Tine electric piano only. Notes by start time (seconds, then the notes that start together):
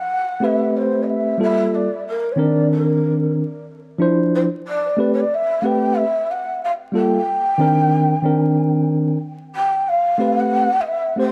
0.40 A3 C4 G4 B4
1.38 G3 A#3 F4 A4
2.36 D#3 C4 D4 A#4
3.98 F3 D4 E4 C5
4.97 A3 C4 G4 B4
5.62 A3 C4 G4 B4
6.92 G3 A#3 F4 A4
7.58 D#3 C4 D4 A#4
8.23 D#3 C4 D4 A#4
10.18 A3 C4 G4 B4
11.16 A3 C4 G4 C5